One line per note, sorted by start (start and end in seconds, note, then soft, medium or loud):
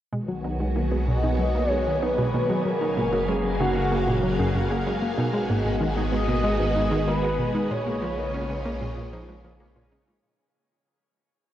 0.12 2.62 B1 medium
0.12 0.21 B2 medium
0.12 2.63 D#3 medium
0.12 2.63 F#3 medium
0.12 0.22 G#3 medium
0.12 2.63 B3 medium
0.12 2.63 F#4 medium
0.12 10.25 G#4 medium
0.12 10.25 G#5 medium
0.28 0.37 F#3 medium
0.44 0.49 B3 medium
0.44 0.50 D#4 medium
0.60 0.66 G#3 medium
0.60 0.65 D#4 medium
0.76 0.85 D#3 medium
0.76 0.90 A#3 medium
0.91 1.01 G#3 medium
0.91 1.05 B3 medium
1.07 1.13 B2 medium
1.07 1.71 D#5 loud
1.23 1.32 B2 medium
1.23 1.29 D#4 medium
1.39 1.48 F#3 medium
1.39 1.45 G#3 medium
1.55 1.69 A#3 medium
1.55 1.60 B3 medium
1.71 1.80 G#3 medium
1.71 1.76 D#4 medium
1.71 2.03 C#5 loud
1.87 1.95 D#3 medium
2.02 2.15 B3 medium
2.02 2.08 D#4 medium
2.02 2.67 B4 loud
2.18 2.23 B2 loud
2.18 2.24 G#3 medium
2.34 2.43 B2 medium
2.34 2.48 A#3 medium
2.50 2.58 F#3 loud
2.50 2.59 G#3 medium
2.65 5.15 F#1 medium
2.65 5.15 C#3 medium
2.65 2.71 F#3 medium
2.65 5.16 F#3 medium
2.65 5.16 A#3 medium
2.65 3.30 A#4 loud
2.65 5.16 F5 medium
2.81 2.86 A#3 medium
2.81 2.87 D#4 medium
2.97 3.06 A#2 loud
2.97 3.03 G#3 medium
3.13 3.26 F#3 loud
3.13 3.27 A#3 medium
3.28 3.34 F#2 medium
3.28 3.38 G#3 medium
3.28 3.59 G#4 medium
3.44 3.53 F#2 medium
3.60 3.69 C#3 loud
3.60 3.66 D#4 medium
3.60 4.82 F#4 medium
3.76 3.81 F#3 medium
3.76 3.82 G#3 medium
3.92 3.97 A#3 medium
3.92 4.06 A#3 medium
4.07 4.16 A#2 loud
4.07 4.17 G#3 medium
4.23 4.36 F#3 medium
4.39 4.44 F#2 loud
4.39 4.45 D#4 medium
4.55 4.64 F#2 medium
4.55 4.61 G#3 medium
4.71 4.79 C#3 loud
4.71 4.85 A#3 medium
4.86 4.92 F#3 medium
4.86 4.96 G#3 medium
5.02 5.08 A#3 medium
5.18 7.68 G#1 medium
5.18 5.27 B2 loud
5.18 7.68 D#3 medium
5.18 10.19 G#3 medium
5.18 7.68 B3 medium
5.18 5.24 D#4 medium
5.18 7.68 F#4 medium
5.33 5.47 G#3 loud
5.33 5.40 G#3 medium
5.49 5.55 G#2 loud
5.49 5.64 A#3 medium
5.65 5.74 G#2 medium
5.65 5.75 G#3 medium
5.81 5.90 D#3 loud
5.97 6.02 G#3 medium
5.97 6.03 D#4 medium
6.12 6.19 G#3 medium
6.12 6.18 B3 medium
6.12 7.03 D#5 loud
6.28 6.37 B2 medium
6.28 6.43 A#3 medium
6.44 6.57 G#3 loud
6.44 6.54 G#3 medium
6.59 6.65 G#2 loud
6.76 6.84 G#2 medium
6.76 6.82 D#4 medium
6.91 7.00 D#3 loud
6.91 6.98 G#3 medium
7.07 7.12 G#3 medium
7.07 7.22 A#3 medium
7.07 7.67 B4 medium
7.23 7.33 G#3 medium
7.23 7.28 B3 medium
7.39 7.48 B2 medium
7.54 7.68 G#3 loud
7.54 7.61 D#4 medium
7.71 10.20 A#1 medium
7.71 7.76 A#2 loud
7.71 10.21 C#3 medium
7.71 7.77 G#3 medium
7.71 10.21 A#3 medium
7.71 10.21 F4 medium
7.71 9.56 C#5 loud
7.86 7.95 A#2 medium
7.86 8.01 A#3 medium
8.02 8.11 F3 loud
8.02 8.12 G#3 medium
8.18 8.23 A#3 medium
8.34 8.39 C#4 medium
8.34 8.40 D#4 medium
8.49 8.58 C#3 loud
8.49 8.55 G#3 medium
8.65 8.78 A#3 loud
8.65 8.80 A#3 medium
8.81 8.86 A#2 loud
8.81 8.91 G#3 medium
8.97 9.06 A#2 medium
9.13 9.21 F3 loud
9.13 9.19 D#4 medium
9.28 9.34 F3 medium
9.28 9.34 G#3 medium
9.44 9.53 F3 medium
9.44 9.59 A#3 medium
9.60 9.70 G#3 medium
9.60 9.69 A#3 loud
9.76 9.85 A#2 loud
9.92 10.00 C#3 medium
9.92 9.98 D#4 medium
10.08 10.13 A#2 medium
10.08 10.13 G#3 medium